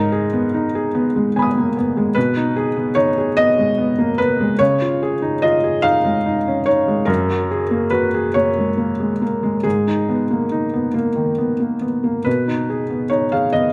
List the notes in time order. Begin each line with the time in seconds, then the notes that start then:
Already playing: G#2 D#4 A#4
0.12 G#4
0.33 B3
0.54 D#4
0.75 G#4
0.95 B3
1.16 G#3
1.36 B3 G#5 B5
1.42 D#6
1.57 A#3
1.77 B3
1.97 G#3
2.15 B2 B4
2.36 D#4
2.56 G#4
2.76 B3
2.95 D#4 C#5
3.18 G#4
3.37 B3 D#5
3.58 G#3
3.78 B3
3.98 A#3
4.18 B3 B4
4.41 G#3
4.59 C#3 C#5
4.81 F4
5.02 G#4
5.22 D#4
5.42 F4 D#5
5.64 G#4
5.82 D#4 F5
6.04 G#3
6.26 D#4
6.48 C#4
6.66 D#4 C#5
6.88 G#3
7.05 F#2 A#4
7.30 F#4
7.51 G#4
7.71 A#3
7.90 F#4 B4
8.14 G#4
8.34 A#3 C#5
8.58 G#3
8.77 A#3
9.00 G#3
9.22 A#3
9.43 G#3
9.63 G#2 G#4
9.88 D#4
10.09 B3
10.31 A#3
10.52 D#4
10.73 B3
10.94 A#3
11.16 D#3
11.38 B3
11.60 A#3
11.81 B3
12.04 A#3
12.24 B2 B4
12.48 D#4
12.70 G#4
12.90 B3
13.09 D#4 C#5
13.32 G#4 F5
13.53 B3 D#5